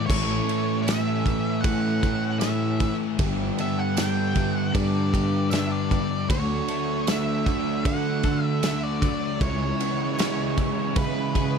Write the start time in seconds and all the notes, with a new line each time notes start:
0.06 A1 A2 E3 A3 C#4 C#5, kick, crash
0.11 A4
0.49 A3, ride
0.82 E5
0.87 C#4, snare, ride, tambourine
1.24 E3 A3, kick, ride
1.61 A2 E3 F#5, kick, ride
1.65 A3 C#4
2.01 E3 A3, kick, ride
2.40 A2 E3 A3 C#4 E5, snare, ride, tambourine
2.79 E3 A3, kick, ride
3.17 G1 G2 D3 E3 G3 B3 D4 G4, kick, ride
3.58 B3 E5, ride
3.79 F#5
3.97 D4 G5, snare, ride, tambourine
4.33 D3 E3 G3, kick, ride
4.53 F#5
4.73 G2 D3 G3 D4 D5, kick, ride
5.12 D3 G3 G4, kick, ride
5.51 G2 D3 G3 D4 E5, snare, ride, tambourine
5.72 D5
5.91 D3 E3 G3, kick, ride
6.29 D2 D3 F#3 A3 D4 F#4 C#5, kick, ride
6.68 A3, ride
7.07 E5, snare, ride, tambourine
7.46 F#3 A3 D4, kick, ride
7.84 D3 A3 D4 F#5, kick, ride
8.23 A3 D4 A4, kick, ride
8.44 E5
8.61 D3 A3 D4 E5, snare, ride, tambourine
8.83 D5
9.01 F#3 A3 D4, kick, ride
9.39 C#2 C#3 E3 G#3 C#4 E4 C#5, kick, ride
9.80 B3, ride
10.18 C#4, snare, ride, tambourine
10.56 E3 G#3 C#4, kick, ride
10.95 C#3 G#3 C#4 B4, kick, ride
11.33 G#3 C#4 G#4, kick, ride